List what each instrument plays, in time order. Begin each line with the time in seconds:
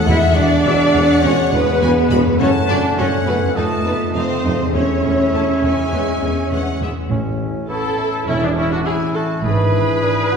Already playing: harp E3 B3 B4, clarinet B3, violin section F#5, oboe F#5
0.00 harp F#4 G#4
0.06 tuba E1, double bass section E2, bassoon G#3, viola section G#3 F#4, french horn section E4, cello section E4, violin section E5, flute section E5
0.36 tuba E1, double bass section E2, viola section G#3 F#4, french horn section D4, cello section D4, violin section D5, flute section D5
0.65 tuba E1, double bass section E2, viola section G#3 F#4, violin section E5
0.94 tuba E1, double bass section E2, viola section G#3 F#4, violin section F#5
1.22 tuba E1, double bass section E2, viola section G#3 F#4, french horn section C#4, cello section C#4, flute section C#5, violin section C#5
1.52 tuba E1, double bass section E2, viola section G#3 F#4, cello section B3, french horn section B3, violin section B4, flute section B4
1.81 tuba E1, double bass section E2, viola section G#3 F#4, violin section G#5
2.10 tuba E1, double bass section E2, viola section G#3 F#4, violin section B5
2.22 harp F#2
2.26 harp A3
2.31 harp F#4
2.35 tuba F#1, clarinet C#4, harp A4, flute section C#5, violin section C#5
2.40 double bass section F#2, bassoon A3, viola section A3 F#4, cello section C#4, french horn section C#4, oboe F#5, violin section A5
2.68 tuba F#1, double bass section F#2, viola section A3 F#4, cello section D4, french horn section D4, flute section D5, violin section D5
2.98 tuba F#1, double bass section F#2, viola section A3 F#4, cello section C#4, french horn section C#4, flute section C#5, violin section C#5 F#5
3.26 tuba F#1, double bass section F#2, viola section A3 F#4, french horn section B3, cello section B3, violin section B4, flute section B4
3.38 harp F2
3.43 harp C4
3.47 harp D#4
3.51 clarinet F4, harp A4
3.56 tuba F1, double bass section F2, viola section A3 D#4, cello section A3, french horn section A3, flute section A4, violin section A4 A5, oboe D#5
3.85 tuba F1, double bass section F2, viola section A3 D#4, french horn section B3, cello section B3, violin section B4, flute section B4
4.13 tuba F1, double bass section F2, viola section A3 D#4, french horn section C4, cello section C4, flute section C5, violin section C5 F5
4.44 tuba F1, double bass section F2, viola section A3 D#4, violin section D#5
4.56 harp E2
4.61 harp A3
4.65 harp E4
4.70 tuba E1, double bass section E2, viola section A3 C#4, clarinet E4, harp A4, flute section C#5
4.74 cello section C#4, french horn section C#4, violin section C#5, oboe E5
5.03 tuba E1, double bass section E2, viola section A3 C#4
5.32 tuba E1, double bass section E2, viola section A3 C#4, violin section A5
5.62 tuba E1, double bass section E2, viola section A3 C#4, violin section G#5
5.74 harp E2
5.79 harp G#3
5.83 harp E4
5.88 double bass section E2, harp B4
5.92 tuba E1, bassoon G#3, viola section G#3 B3
6.21 tuba E1, double bass section E2, viola section G#3 B3
6.51 tuba E1, double bass section E2, viola section G#3 B3, violin section F#5
6.81 tuba E1, double bass section E2, viola section G#3 B3, violin section E5
7.10 tuba A1, double bass section A1, harp A2, cello section A2, french horn section C#4 E4, bassoon C#4
7.40 harp E4
7.69 harp A3, bassoon B3, oboe E4, viola section A4, flute section A5, violin section A5 C#6
7.99 bassoon A3, harp C#5
8.27 tuba E1, double bass section E1, cello section E2, harp E3, oboe C#4, bassoon C#4, viola section E4, flute section E5, violin section E5
8.41 oboe B3, viola section D4, flute section D5, violin section D5
8.55 oboe C#4, viola section E4, harp E4, flute section E5, violin section E5
8.70 oboe D4, viola section F#4, violin section F#5, flute section F#5
8.85 harp A3, bassoon E4, oboe E4, viola section G#4, violin section G#5 C#6, flute section G#5
9.14 oboe F#4, viola section A4, harp C#5, violin section A5, flute section A5
9.43 double bass section G#1, tuba G#1, cello section G#2, harp G#2, french horn section D4, oboe G#4, viola section B4, violin section B5, flute section B5
9.74 harp E4
10.02 bassoon D4, harp D4, violin section D6
10.32 bassoon F#4